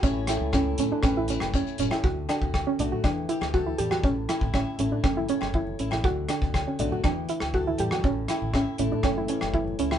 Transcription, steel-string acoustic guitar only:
\new Staff \with { instrumentName = "Steel-string acoustic guitar" } { \time 4/4 \key a \mixolydian \tempo 4 = 120 << { <a cis' e' cis''>4 e'8 cis'8 b'8 e'8 cis''8 cis'8 | r8 fis'4 fis'8 r8 g'8 a'8 g'8 | r8 e'8 e''8 e'4 cis''4 e'8 | r8 fis'8 cis''8 fis'8 r4 a'8 g'8 |
r8 e'8 e''8 e'4 cis''4 e'8 | } \\ { a,8 a2.~ a8 | d4. a8 e4. g8 | a,4. a2~ a8 | d4. a8 e4. g8 |
a,4. a4 e4. | } >> }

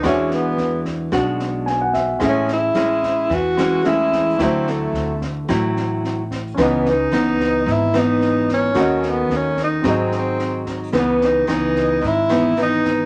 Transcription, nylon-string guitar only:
\new Staff \with { instrumentName = "Nylon-string guitar" } { \time 4/4 \key cis \minor \tempo 4 = 110 << { <gis d' fis'>2 <gis d' fis'>4. r8 | <gis cis' e'>8 r8 <gis cis' e'>4 r8 <gis cis' e'>8 <gis cis' e'>4 | <fis c' e'>4. r8 <fis c' e'>4. r8 | <e b dis'>8 r8 <e b dis'>4. <e b dis'>4. |
<a cis' fis'>4. r8 <fis bis dis'>2 | <e b dis'>4 <e b dis'>4 r8 <e b dis'>8 <e b dis'>4 | } \\ { e2 b,2 | a,2 e2 | d2 a,2 | cis2 gis,2 |
dis2 gis,2 | cis2 gis,2 | } >> }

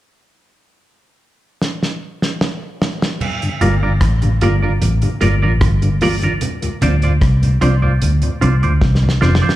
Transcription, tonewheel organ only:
\new Staff \with { instrumentName = "Tonewheel organ" } { \clef bass \time 4/4 \key g \minor \tempo 4 = 75 << { r1 | r8 <g bes f'>8 r8 <g bes f'>8 r8 <g bes f'>8 r8 <g bes f'>8 | r8 <f c' d'>8 r8 <f c' d'>8 r8 <f c' d'>8 r8 <f c' d'>8 | } \\ { r1 | r16 <g, d>16 r16 <g, d>16 r16 <g, d>16 r16 <g, d>16 r16 <g, d>16 r16 <g, d>16 r16 <g, d>16 r16 <g, d>16 | r16 <d, a,>16 r16 <d, a,>16 r16 <d, a,>16 r16 <d, a,>16 r16 <d, a,>16 r16 <d, a,>16 r16 <d, a,>16 r16 <d, a,>16 | } >> }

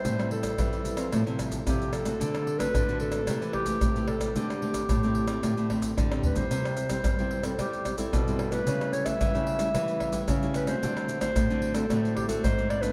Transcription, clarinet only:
\new Staff \with { instrumentName = "Clarinet" } { \time 4/4 \key d \mixolydian \tempo 4 = 111 c''8 a'2 r8 g'8 a'8~ | a'8. b'8. a'4 g'4 a'8 | g'2. r8 b'16 c''16~ | \key c \major c''8. c''4 a'16 g'8. a'4 b'16~ |
b'8 cis''16 e''2~ e''16 r8 b'16 c''16~ | c''8. c''4 a'8. g'16 a'16 c''8 d''16 b'16 | }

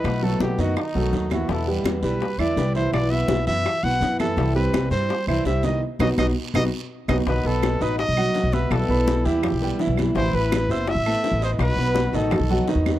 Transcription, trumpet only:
\new Staff \with { instrumentName = "Trumpet" } { \time 4/4 \key b \phrygian \tempo 4 = 166 b'8 a'8 g'8 fis'8 dis'4. fis'8 | a'8 r4 b'4 d''4 c''8 | d''8 e''4 e''4 fis''4 a'8~ | a'8 b'4 c''4 c''8 e''8 dis''8 |
r8 dis''8 dis''8 r8 dis''8 r4 dis''8 | b'8 a'4 b'8 dis''4. b'8 | a'4. g'4. r4 | c''8 b'4 c''8 e''4. c''8 |
b'4. a'4. r4 | }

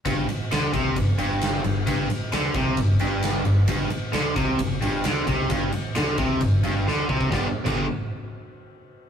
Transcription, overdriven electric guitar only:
\new Staff \with { instrumentName = "Overdriven electric guitar" } { \clef bass \time 4/4 \key g \major \tempo 4 = 132 g,8 r8 d8 c8 g,8 g,4 g,8 | g,8 r8 d8 c8 g,8 g,4 g,8 | g,8 r8 d8 c8 g,8 g,8 d8 c8 | g,8 r8 d8 c8 g,8 g,8 d8 c8 |
<g, d g b d'>16 r8 <g, d g b d'>8 r2 r8. | }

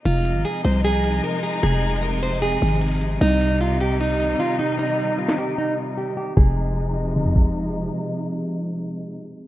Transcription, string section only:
\new Staff \with { instrumentName = "String section" } { \clef bass \time 4/4 \key f \minor \tempo 4 = 152 << { <f aes ees'>1~ | <f aes ees'>1 | <ees g ees'>1~ | <ees g ees'>1 |
<c f aes ees'>1~ | <c f aes ees'>1 | } \\ { c1~ | c1~ | c1~ | c1 |
r1 | r1 | } >> }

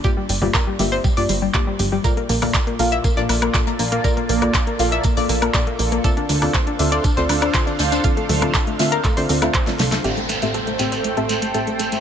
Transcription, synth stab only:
\new Staff \with { instrumentName = "Synth stab" } { \time 4/4 \key d \minor \tempo 4 = 120 <g, bes f' g' d''>16 r8 <g, bes f' g' d''>8. <g, bes f' g' e''>16 r8 <g, bes f' g' d''>8 r16 <g, bes f' g' d''>16 r8. | <bes, bes f' a' d''>16 r8 <bes, bes f' a' d''>8. <bes, bes f' a' f''>16 r8 <bes, bes f' a' d''>8 r16 <bes, bes f' a' d''>16 r8. | <bes, bes f' a' d''>16 r8 <bes, bes f' a' d''>8. <bes, bes f' a' f''>16 r8 <bes, bes f' a' d''>8 r16 <bes, bes f' a' d''>16 r8. | <d c' f' a' d''>16 r8 <d c' f' a' d''>8. <d c' f' a' e''>16 r8 <d c' f' a' d''>8 r16 <d c' f' a' d''>16 r8. |
<d c' f' a' d''>16 r8 <d c' f' a' d''>8. <d c' f' a' e''>16 r8 <d c' f' a' d''>16 <d c' f' a' d''>16 <d c' f' a' e''>8 <d c' f' a' d''>8 r16 | <a, c' g' a' e''>16 r8 <a, c' g' a' e''>8. <a, c' g' a' g''>16 r8 <a, c' g' a' e''>8 r16 <a, c' g' a' e''>16 r8. | }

